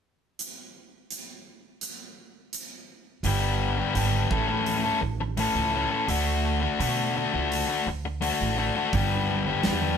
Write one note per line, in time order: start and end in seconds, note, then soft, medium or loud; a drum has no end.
0.39 closed hi-hat soft
1.11 closed hi-hat soft
1.81 closed hi-hat soft
2.53 closed hi-hat soft
3.23 3.81 G1 medium
3.23 3.92 G2 medium
3.23 3.93 D3 medium
3.23 3.79 G3 medium
3.23 3.78 B3 medium
3.23 3.77 D4 medium
3.23 3.77 G4 medium
3.23 open hi-hat soft
3.78 3.94 G3 soft
3.78 3.94 B3 soft
3.78 3.95 D4 medium
3.78 3.95 G4 medium
3.93 4.24 G#1 medium
3.93 4.28 G2 medium
3.93 4.29 D3 medium
3.93 4.29 G3 medium
3.93 4.29 B3 medium
3.93 4.29 D4 medium
3.93 4.29 G4 medium
3.93 open hi-hat soft
4.29 4.88 A1 medium
4.29 4.84 A2 medium
4.29 4.84 E3 medium
4.29 4.49 A3 medium
4.29 4.49 C#4 medium
4.29 4.47 A4 medium
4.29 kick medium
4.48 4.85 A3 medium
4.48 4.84 C#4 medium
4.48 4.83 A4 medium
4.66 open hi-hat soft
4.84 5.00 A3 soft
4.84 5.01 C#4 medium
4.84 5.01 A4 medium
5.01 5.45 A1 medium
5.01 muted overdriven electric guitar stroke soft
5.20 muted overdriven electric guitar stroke soft
5.37 6.07 A2 medium
5.37 5.72 E3 medium
5.37 5.73 A3 medium
5.37 5.74 C#4 medium
5.37 5.75 A4 medium
5.37 open hi-hat soft
5.54 5.84 C#2 medium
5.73 6.07 E3 medium
5.73 5.92 A3 medium
5.73 5.91 C#4 medium
5.73 5.89 A4 medium
5.91 6.07 A3 soft
5.91 6.08 C#4 soft
5.91 6.07 A4 medium
6.07 6.66 D2 medium
6.07 6.78 D3 medium
6.07 6.62 A3 medium
6.07 6.62 D4 medium
6.07 6.60 F#4 medium
6.07 open hi-hat soft
6.61 6.79 A3 soft
6.61 6.81 D4 medium
6.61 6.80 F#4 medium
6.79 7.23 B2 medium
6.79 7.14 D3 medium
6.79 7.15 A3 medium
6.79 7.17 D4 medium
6.79 7.16 F#4 medium
6.79 open hi-hat soft
7.15 7.69 D3 medium
7.15 7.35 A3 medium
7.15 7.34 D4 medium
7.15 7.32 F#4 medium
7.33 7.62 C#2 medium
7.33 7.69 A3 soft
7.33 7.69 D4 medium
7.33 7.66 F#4 medium
7.52 open hi-hat soft
7.68 7.86 A3 soft
7.68 7.88 D4 medium
7.68 7.87 F#4 medium
7.87 8.30 D2 medium
7.87 muted overdriven electric guitar stroke soft
8.05 muted overdriven electric guitar stroke soft
8.21 8.56 D3 medium
8.21 8.57 A3 medium
8.21 8.58 D4 medium
8.21 8.58 F#4 medium
8.21 open hi-hat soft
8.41 8.69 A1 medium
8.57 8.91 D3 medium
8.57 8.77 A3 medium
8.57 8.76 D4 medium
8.57 8.74 F#4 medium
8.76 8.92 A3 soft
8.76 8.94 D4 medium
8.76 8.91 F#4 medium
8.93 9.50 G1 medium
8.93 9.63 G2 medium
8.93 9.64 D3 medium
8.93 9.48 G3 medium
8.93 9.47 B3 medium
8.93 9.47 D4 medium
8.93 9.45 G4 medium
8.93 kick medium
8.93 open hi-hat soft
9.46 9.65 G3 soft
9.46 9.66 B3 soft
9.46 9.66 D4 medium
9.46 9.66 G4 medium
9.63 9.97 E2 medium
9.63 9.97 G2 medium
9.63 9.97 D3 medium
9.63 9.97 G3 medium
9.63 9.97 B3 medium
9.63 9.97 D4 medium
9.63 9.97 G4 medium
9.63 snare medium
9.63 open hi-hat soft